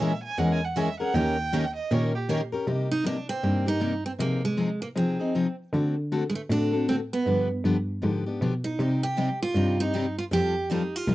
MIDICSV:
0, 0, Header, 1, 5, 480
1, 0, Start_track
1, 0, Key_signature, -3, "minor"
1, 0, Tempo, 382166
1, 1436, Time_signature, 4, 2, 24, 8
1, 14003, End_track
2, 0, Start_track
2, 0, Title_t, "Violin"
2, 0, Program_c, 0, 40
2, 0, Note_on_c, 0, 76, 82
2, 288, Note_off_c, 0, 76, 0
2, 296, Note_on_c, 0, 80, 107
2, 485, Note_on_c, 0, 78, 88
2, 504, Note_off_c, 0, 80, 0
2, 653, Note_on_c, 0, 80, 109
2, 672, Note_off_c, 0, 78, 0
2, 812, Note_on_c, 0, 78, 75
2, 831, Note_off_c, 0, 80, 0
2, 964, Note_on_c, 0, 76, 83
2, 983, Note_off_c, 0, 78, 0
2, 1247, Note_off_c, 0, 76, 0
2, 1255, Note_on_c, 0, 78, 108
2, 1437, Note_on_c, 0, 79, 109
2, 1456, Note_off_c, 0, 78, 0
2, 2199, Note_off_c, 0, 79, 0
2, 2206, Note_on_c, 0, 75, 88
2, 2417, Note_on_c, 0, 73, 77
2, 2436, Note_off_c, 0, 75, 0
2, 2688, Note_off_c, 0, 73, 0
2, 2695, Note_on_c, 0, 67, 85
2, 2804, Note_off_c, 0, 67, 0
2, 14003, End_track
3, 0, Start_track
3, 0, Title_t, "Steel-string acoustic guitar"
3, 0, Program_c, 1, 25
3, 3661, Note_on_c, 1, 63, 96
3, 3844, Note_off_c, 1, 63, 0
3, 3849, Note_on_c, 1, 62, 90
3, 4115, Note_off_c, 1, 62, 0
3, 4134, Note_on_c, 1, 60, 95
3, 4618, Note_off_c, 1, 60, 0
3, 4623, Note_on_c, 1, 63, 87
3, 5062, Note_off_c, 1, 63, 0
3, 5096, Note_on_c, 1, 60, 73
3, 5159, Note_off_c, 1, 60, 0
3, 5279, Note_on_c, 1, 58, 97
3, 5580, Note_off_c, 1, 58, 0
3, 5587, Note_on_c, 1, 56, 77
3, 6047, Note_off_c, 1, 56, 0
3, 6052, Note_on_c, 1, 58, 78
3, 6115, Note_off_c, 1, 58, 0
3, 6247, Note_on_c, 1, 60, 72
3, 6966, Note_off_c, 1, 60, 0
3, 7907, Note_on_c, 1, 56, 67
3, 7975, Note_off_c, 1, 56, 0
3, 7980, Note_on_c, 1, 57, 73
3, 8043, Note_off_c, 1, 57, 0
3, 8183, Note_on_c, 1, 62, 83
3, 8646, Note_off_c, 1, 62, 0
3, 8651, Note_on_c, 1, 60, 84
3, 8729, Note_off_c, 1, 60, 0
3, 8958, Note_on_c, 1, 59, 77
3, 9392, Note_off_c, 1, 59, 0
3, 10854, Note_on_c, 1, 63, 78
3, 11345, Note_on_c, 1, 67, 99
3, 11349, Note_off_c, 1, 63, 0
3, 11787, Note_off_c, 1, 67, 0
3, 11837, Note_on_c, 1, 65, 97
3, 12311, Note_on_c, 1, 63, 86
3, 12320, Note_off_c, 1, 65, 0
3, 12750, Note_off_c, 1, 63, 0
3, 12792, Note_on_c, 1, 65, 70
3, 12855, Note_off_c, 1, 65, 0
3, 12977, Note_on_c, 1, 67, 106
3, 13416, Note_off_c, 1, 67, 0
3, 13460, Note_on_c, 1, 63, 66
3, 13762, Note_off_c, 1, 63, 0
3, 13762, Note_on_c, 1, 65, 83
3, 14003, Note_off_c, 1, 65, 0
3, 14003, End_track
4, 0, Start_track
4, 0, Title_t, "Steel-string acoustic guitar"
4, 0, Program_c, 2, 25
4, 19, Note_on_c, 2, 52, 95
4, 20, Note_on_c, 2, 61, 89
4, 22, Note_on_c, 2, 56, 84
4, 27, Note_on_c, 2, 68, 99
4, 27, Note_on_c, 2, 70, 108
4, 150, Note_off_c, 2, 52, 0
4, 150, Note_off_c, 2, 61, 0
4, 151, Note_off_c, 2, 56, 0
4, 153, Note_off_c, 2, 68, 0
4, 154, Note_off_c, 2, 70, 0
4, 481, Note_on_c, 2, 52, 72
4, 486, Note_on_c, 2, 56, 80
4, 490, Note_on_c, 2, 61, 80
4, 490, Note_on_c, 2, 68, 73
4, 497, Note_on_c, 2, 70, 86
4, 744, Note_off_c, 2, 52, 0
4, 746, Note_off_c, 2, 56, 0
4, 748, Note_off_c, 2, 61, 0
4, 748, Note_off_c, 2, 68, 0
4, 752, Note_off_c, 2, 70, 0
4, 957, Note_on_c, 2, 52, 86
4, 965, Note_on_c, 2, 56, 89
4, 968, Note_on_c, 2, 61, 90
4, 969, Note_on_c, 2, 68, 95
4, 972, Note_on_c, 2, 70, 100
4, 1097, Note_off_c, 2, 52, 0
4, 1101, Note_off_c, 2, 56, 0
4, 1103, Note_off_c, 2, 61, 0
4, 1103, Note_off_c, 2, 68, 0
4, 1104, Note_off_c, 2, 70, 0
4, 1255, Note_on_c, 2, 70, 76
4, 1267, Note_on_c, 2, 68, 61
4, 1273, Note_on_c, 2, 61, 57
4, 1430, Note_off_c, 2, 70, 0
4, 1431, Note_off_c, 2, 61, 0
4, 1436, Note_off_c, 2, 68, 0
4, 1442, Note_on_c, 2, 51, 87
4, 1446, Note_on_c, 2, 61, 84
4, 1454, Note_on_c, 2, 58, 75
4, 1457, Note_on_c, 2, 67, 91
4, 1458, Note_on_c, 2, 70, 88
4, 1703, Note_off_c, 2, 51, 0
4, 1705, Note_off_c, 2, 61, 0
4, 1709, Note_off_c, 2, 58, 0
4, 1710, Note_off_c, 2, 67, 0
4, 1711, Note_off_c, 2, 70, 0
4, 1916, Note_on_c, 2, 61, 105
4, 1920, Note_on_c, 2, 51, 89
4, 1921, Note_on_c, 2, 58, 99
4, 1927, Note_on_c, 2, 67, 95
4, 1929, Note_on_c, 2, 70, 106
4, 2055, Note_off_c, 2, 61, 0
4, 2057, Note_off_c, 2, 51, 0
4, 2057, Note_off_c, 2, 58, 0
4, 2061, Note_off_c, 2, 67, 0
4, 2061, Note_off_c, 2, 70, 0
4, 2402, Note_on_c, 2, 51, 71
4, 2405, Note_on_c, 2, 61, 83
4, 2405, Note_on_c, 2, 67, 75
4, 2408, Note_on_c, 2, 58, 91
4, 2411, Note_on_c, 2, 70, 90
4, 2661, Note_off_c, 2, 51, 0
4, 2663, Note_off_c, 2, 61, 0
4, 2663, Note_off_c, 2, 67, 0
4, 2664, Note_off_c, 2, 58, 0
4, 2666, Note_off_c, 2, 70, 0
4, 2870, Note_on_c, 2, 51, 87
4, 2878, Note_on_c, 2, 61, 99
4, 2879, Note_on_c, 2, 58, 104
4, 2888, Note_on_c, 2, 67, 104
4, 2891, Note_on_c, 2, 70, 104
4, 3011, Note_off_c, 2, 51, 0
4, 3015, Note_off_c, 2, 61, 0
4, 3016, Note_off_c, 2, 58, 0
4, 3020, Note_off_c, 2, 67, 0
4, 3022, Note_off_c, 2, 70, 0
4, 3169, Note_on_c, 2, 70, 73
4, 3183, Note_on_c, 2, 67, 67
4, 3185, Note_on_c, 2, 61, 59
4, 3345, Note_off_c, 2, 70, 0
4, 3348, Note_on_c, 2, 48, 58
4, 3349, Note_off_c, 2, 67, 0
4, 3351, Note_on_c, 2, 55, 58
4, 3353, Note_off_c, 2, 61, 0
4, 3358, Note_on_c, 2, 58, 64
4, 3358, Note_on_c, 2, 63, 73
4, 3364, Note_on_c, 2, 67, 73
4, 3614, Note_off_c, 2, 48, 0
4, 3616, Note_off_c, 2, 55, 0
4, 3619, Note_off_c, 2, 58, 0
4, 3619, Note_off_c, 2, 63, 0
4, 3622, Note_off_c, 2, 67, 0
4, 3816, Note_on_c, 2, 48, 79
4, 3824, Note_on_c, 2, 55, 71
4, 3825, Note_on_c, 2, 58, 81
4, 3829, Note_on_c, 2, 63, 88
4, 3833, Note_on_c, 2, 67, 94
4, 3963, Note_off_c, 2, 48, 0
4, 3968, Note_off_c, 2, 55, 0
4, 3968, Note_off_c, 2, 58, 0
4, 3970, Note_off_c, 2, 63, 0
4, 3972, Note_off_c, 2, 67, 0
4, 4309, Note_on_c, 2, 48, 73
4, 4311, Note_on_c, 2, 55, 63
4, 4313, Note_on_c, 2, 58, 71
4, 4317, Note_on_c, 2, 63, 70
4, 4321, Note_on_c, 2, 67, 71
4, 4575, Note_off_c, 2, 48, 0
4, 4576, Note_off_c, 2, 55, 0
4, 4577, Note_off_c, 2, 58, 0
4, 4578, Note_off_c, 2, 63, 0
4, 4581, Note_off_c, 2, 67, 0
4, 4599, Note_on_c, 2, 67, 61
4, 4606, Note_on_c, 2, 63, 48
4, 4613, Note_on_c, 2, 58, 45
4, 4766, Note_off_c, 2, 58, 0
4, 4772, Note_off_c, 2, 63, 0
4, 4772, Note_on_c, 2, 55, 83
4, 4774, Note_off_c, 2, 67, 0
4, 4774, Note_on_c, 2, 48, 82
4, 4781, Note_on_c, 2, 58, 87
4, 4787, Note_on_c, 2, 63, 97
4, 4789, Note_on_c, 2, 67, 88
4, 4922, Note_off_c, 2, 55, 0
4, 4923, Note_off_c, 2, 48, 0
4, 4927, Note_off_c, 2, 58, 0
4, 4929, Note_off_c, 2, 63, 0
4, 4930, Note_off_c, 2, 67, 0
4, 5256, Note_on_c, 2, 48, 61
4, 5258, Note_on_c, 2, 53, 66
4, 5265, Note_on_c, 2, 63, 66
4, 5266, Note_on_c, 2, 60, 66
4, 5274, Note_on_c, 2, 68, 65
4, 5529, Note_off_c, 2, 48, 0
4, 5529, Note_off_c, 2, 53, 0
4, 5533, Note_off_c, 2, 63, 0
4, 5534, Note_off_c, 2, 60, 0
4, 5537, Note_off_c, 2, 68, 0
4, 5739, Note_on_c, 2, 53, 74
4, 5742, Note_on_c, 2, 48, 81
4, 5743, Note_on_c, 2, 60, 94
4, 5749, Note_on_c, 2, 68, 89
4, 5750, Note_on_c, 2, 63, 82
4, 5886, Note_off_c, 2, 53, 0
4, 5887, Note_off_c, 2, 48, 0
4, 5888, Note_off_c, 2, 60, 0
4, 5891, Note_off_c, 2, 63, 0
4, 5891, Note_off_c, 2, 68, 0
4, 6222, Note_on_c, 2, 48, 62
4, 6226, Note_on_c, 2, 60, 63
4, 6226, Note_on_c, 2, 63, 71
4, 6232, Note_on_c, 2, 53, 63
4, 6234, Note_on_c, 2, 68, 67
4, 6492, Note_off_c, 2, 48, 0
4, 6494, Note_off_c, 2, 60, 0
4, 6494, Note_off_c, 2, 63, 0
4, 6497, Note_off_c, 2, 53, 0
4, 6498, Note_off_c, 2, 68, 0
4, 6523, Note_on_c, 2, 68, 56
4, 6537, Note_on_c, 2, 63, 53
4, 6544, Note_on_c, 2, 60, 54
4, 6703, Note_off_c, 2, 68, 0
4, 6708, Note_off_c, 2, 60, 0
4, 6710, Note_off_c, 2, 63, 0
4, 6718, Note_on_c, 2, 53, 88
4, 6719, Note_on_c, 2, 48, 81
4, 6723, Note_on_c, 2, 60, 83
4, 6724, Note_on_c, 2, 63, 94
4, 6726, Note_on_c, 2, 68, 83
4, 6856, Note_off_c, 2, 48, 0
4, 6856, Note_off_c, 2, 53, 0
4, 6858, Note_off_c, 2, 60, 0
4, 6859, Note_off_c, 2, 63, 0
4, 6860, Note_off_c, 2, 68, 0
4, 7203, Note_on_c, 2, 57, 63
4, 7204, Note_on_c, 2, 50, 62
4, 7204, Note_on_c, 2, 60, 70
4, 7214, Note_on_c, 2, 66, 61
4, 7217, Note_on_c, 2, 69, 68
4, 7463, Note_off_c, 2, 57, 0
4, 7464, Note_off_c, 2, 50, 0
4, 7464, Note_off_c, 2, 60, 0
4, 7469, Note_off_c, 2, 66, 0
4, 7470, Note_off_c, 2, 69, 0
4, 7685, Note_on_c, 2, 50, 82
4, 7685, Note_on_c, 2, 57, 80
4, 7690, Note_on_c, 2, 60, 74
4, 7690, Note_on_c, 2, 69, 96
4, 7693, Note_on_c, 2, 66, 88
4, 7820, Note_off_c, 2, 50, 0
4, 7820, Note_off_c, 2, 57, 0
4, 7822, Note_off_c, 2, 60, 0
4, 7822, Note_off_c, 2, 69, 0
4, 7824, Note_off_c, 2, 66, 0
4, 8162, Note_on_c, 2, 50, 64
4, 8162, Note_on_c, 2, 60, 68
4, 8165, Note_on_c, 2, 57, 66
4, 8170, Note_on_c, 2, 66, 65
4, 8170, Note_on_c, 2, 69, 71
4, 8423, Note_off_c, 2, 50, 0
4, 8423, Note_off_c, 2, 60, 0
4, 8425, Note_off_c, 2, 57, 0
4, 8427, Note_off_c, 2, 66, 0
4, 8427, Note_off_c, 2, 69, 0
4, 8446, Note_on_c, 2, 69, 53
4, 8459, Note_on_c, 2, 66, 57
4, 8467, Note_on_c, 2, 60, 49
4, 8626, Note_off_c, 2, 69, 0
4, 8630, Note_off_c, 2, 60, 0
4, 8632, Note_off_c, 2, 66, 0
4, 8642, Note_on_c, 2, 50, 78
4, 8645, Note_on_c, 2, 57, 78
4, 8645, Note_on_c, 2, 60, 83
4, 8647, Note_on_c, 2, 66, 78
4, 8654, Note_on_c, 2, 69, 88
4, 8779, Note_off_c, 2, 50, 0
4, 8781, Note_off_c, 2, 57, 0
4, 8781, Note_off_c, 2, 60, 0
4, 8782, Note_off_c, 2, 66, 0
4, 8785, Note_off_c, 2, 69, 0
4, 9125, Note_on_c, 2, 50, 58
4, 9131, Note_on_c, 2, 59, 73
4, 9132, Note_on_c, 2, 53, 70
4, 9137, Note_on_c, 2, 62, 67
4, 9141, Note_on_c, 2, 67, 63
4, 9385, Note_off_c, 2, 50, 0
4, 9388, Note_off_c, 2, 59, 0
4, 9389, Note_off_c, 2, 53, 0
4, 9391, Note_off_c, 2, 62, 0
4, 9393, Note_off_c, 2, 67, 0
4, 9606, Note_on_c, 2, 50, 82
4, 9607, Note_on_c, 2, 53, 89
4, 9609, Note_on_c, 2, 59, 98
4, 9613, Note_on_c, 2, 62, 77
4, 9618, Note_on_c, 2, 67, 101
4, 9741, Note_off_c, 2, 50, 0
4, 9742, Note_off_c, 2, 53, 0
4, 9743, Note_off_c, 2, 59, 0
4, 9745, Note_off_c, 2, 62, 0
4, 9747, Note_off_c, 2, 67, 0
4, 10070, Note_on_c, 2, 50, 67
4, 10077, Note_on_c, 2, 53, 69
4, 10079, Note_on_c, 2, 59, 71
4, 10080, Note_on_c, 2, 62, 70
4, 10084, Note_on_c, 2, 67, 76
4, 10339, Note_off_c, 2, 50, 0
4, 10342, Note_off_c, 2, 53, 0
4, 10343, Note_off_c, 2, 59, 0
4, 10343, Note_off_c, 2, 62, 0
4, 10346, Note_off_c, 2, 67, 0
4, 10379, Note_on_c, 2, 67, 63
4, 10388, Note_on_c, 2, 62, 49
4, 10398, Note_on_c, 2, 59, 44
4, 10553, Note_off_c, 2, 67, 0
4, 10558, Note_off_c, 2, 62, 0
4, 10559, Note_off_c, 2, 59, 0
4, 10571, Note_on_c, 2, 50, 77
4, 10573, Note_on_c, 2, 53, 90
4, 10574, Note_on_c, 2, 59, 92
4, 10581, Note_on_c, 2, 67, 77
4, 10582, Note_on_c, 2, 62, 90
4, 10705, Note_off_c, 2, 50, 0
4, 10706, Note_off_c, 2, 53, 0
4, 10706, Note_off_c, 2, 59, 0
4, 10710, Note_off_c, 2, 62, 0
4, 10710, Note_off_c, 2, 67, 0
4, 11041, Note_on_c, 2, 48, 61
4, 11044, Note_on_c, 2, 60, 59
4, 11047, Note_on_c, 2, 55, 59
4, 11051, Note_on_c, 2, 67, 72
4, 11056, Note_on_c, 2, 63, 66
4, 11304, Note_off_c, 2, 48, 0
4, 11306, Note_off_c, 2, 60, 0
4, 11308, Note_off_c, 2, 55, 0
4, 11309, Note_off_c, 2, 67, 0
4, 11312, Note_off_c, 2, 63, 0
4, 11519, Note_on_c, 2, 48, 75
4, 11527, Note_on_c, 2, 55, 82
4, 11528, Note_on_c, 2, 60, 81
4, 11535, Note_on_c, 2, 63, 80
4, 11535, Note_on_c, 2, 67, 86
4, 11659, Note_off_c, 2, 48, 0
4, 11663, Note_off_c, 2, 55, 0
4, 11664, Note_off_c, 2, 60, 0
4, 11667, Note_off_c, 2, 63, 0
4, 11667, Note_off_c, 2, 67, 0
4, 12009, Note_on_c, 2, 48, 74
4, 12013, Note_on_c, 2, 55, 61
4, 12013, Note_on_c, 2, 60, 66
4, 12015, Note_on_c, 2, 63, 82
4, 12015, Note_on_c, 2, 67, 72
4, 12269, Note_off_c, 2, 48, 0
4, 12271, Note_off_c, 2, 55, 0
4, 12271, Note_off_c, 2, 60, 0
4, 12272, Note_off_c, 2, 63, 0
4, 12272, Note_off_c, 2, 67, 0
4, 12315, Note_on_c, 2, 67, 51
4, 12324, Note_on_c, 2, 63, 53
4, 12333, Note_on_c, 2, 60, 48
4, 12476, Note_off_c, 2, 63, 0
4, 12481, Note_off_c, 2, 60, 0
4, 12482, Note_off_c, 2, 67, 0
4, 12489, Note_on_c, 2, 55, 71
4, 12491, Note_on_c, 2, 48, 76
4, 12492, Note_on_c, 2, 63, 84
4, 12496, Note_on_c, 2, 60, 83
4, 12500, Note_on_c, 2, 67, 91
4, 12625, Note_off_c, 2, 48, 0
4, 12625, Note_off_c, 2, 55, 0
4, 12626, Note_off_c, 2, 63, 0
4, 12628, Note_off_c, 2, 60, 0
4, 12630, Note_off_c, 2, 67, 0
4, 12966, Note_on_c, 2, 53, 66
4, 12970, Note_on_c, 2, 55, 62
4, 12972, Note_on_c, 2, 60, 62
4, 12975, Note_on_c, 2, 65, 57
4, 12975, Note_on_c, 2, 69, 82
4, 13227, Note_off_c, 2, 53, 0
4, 13229, Note_off_c, 2, 55, 0
4, 13231, Note_off_c, 2, 60, 0
4, 13232, Note_off_c, 2, 65, 0
4, 13232, Note_off_c, 2, 69, 0
4, 13450, Note_on_c, 2, 53, 70
4, 13458, Note_on_c, 2, 60, 87
4, 13459, Note_on_c, 2, 55, 82
4, 13459, Note_on_c, 2, 65, 76
4, 13462, Note_on_c, 2, 69, 81
4, 13586, Note_off_c, 2, 53, 0
4, 13589, Note_off_c, 2, 60, 0
4, 13590, Note_off_c, 2, 55, 0
4, 13590, Note_off_c, 2, 65, 0
4, 13591, Note_off_c, 2, 69, 0
4, 13920, Note_on_c, 2, 55, 74
4, 13925, Note_on_c, 2, 53, 59
4, 13928, Note_on_c, 2, 60, 67
4, 13931, Note_on_c, 2, 65, 79
4, 13939, Note_on_c, 2, 69, 68
4, 14003, Note_off_c, 2, 53, 0
4, 14003, Note_off_c, 2, 55, 0
4, 14003, Note_off_c, 2, 60, 0
4, 14003, Note_off_c, 2, 65, 0
4, 14003, Note_off_c, 2, 69, 0
4, 14003, End_track
5, 0, Start_track
5, 0, Title_t, "Cello"
5, 0, Program_c, 3, 42
5, 0, Note_on_c, 3, 46, 95
5, 286, Note_off_c, 3, 46, 0
5, 476, Note_on_c, 3, 40, 83
5, 1243, Note_off_c, 3, 40, 0
5, 1433, Note_on_c, 3, 39, 93
5, 2200, Note_off_c, 3, 39, 0
5, 2399, Note_on_c, 3, 46, 92
5, 3164, Note_off_c, 3, 46, 0
5, 3353, Note_on_c, 3, 48, 71
5, 4120, Note_off_c, 3, 48, 0
5, 4312, Note_on_c, 3, 43, 78
5, 5080, Note_off_c, 3, 43, 0
5, 5268, Note_on_c, 3, 48, 70
5, 6038, Note_off_c, 3, 48, 0
5, 6223, Note_on_c, 3, 53, 77
5, 6996, Note_off_c, 3, 53, 0
5, 7190, Note_on_c, 3, 50, 80
5, 7961, Note_off_c, 3, 50, 0
5, 8158, Note_on_c, 3, 45, 84
5, 8926, Note_off_c, 3, 45, 0
5, 9116, Note_on_c, 3, 43, 70
5, 9501, Note_off_c, 3, 43, 0
5, 9596, Note_on_c, 3, 43, 75
5, 10005, Note_off_c, 3, 43, 0
5, 10084, Note_on_c, 3, 44, 74
5, 10489, Note_off_c, 3, 44, 0
5, 10564, Note_on_c, 3, 47, 71
5, 10970, Note_off_c, 3, 47, 0
5, 11037, Note_on_c, 3, 48, 75
5, 11806, Note_off_c, 3, 48, 0
5, 11988, Note_on_c, 3, 43, 80
5, 12761, Note_off_c, 3, 43, 0
5, 12951, Note_on_c, 3, 41, 71
5, 13723, Note_off_c, 3, 41, 0
5, 13906, Note_on_c, 3, 36, 82
5, 14003, Note_off_c, 3, 36, 0
5, 14003, End_track
0, 0, End_of_file